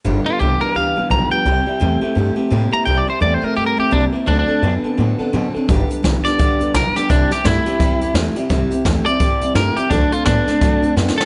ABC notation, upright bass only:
X:1
M:4/4
L:1/8
Q:"Swing" 1/4=170
K:G
V:1 name="Upright bass" clef=bass
G,,, z C,, z D,, B,,, B,,, z | C,, z E,, z G,, z A,, z | C,, z E,, z G,, E,, C,, z | D,, z F,, z A,, z B,, z |
G,,, z B,,, z D,, E,, B,,, z | C,, z G,, z E,, E,, E,, z | C,, z E,, z G,, A,, G,, z | D,, z A,, z G,, F,, F,, z |]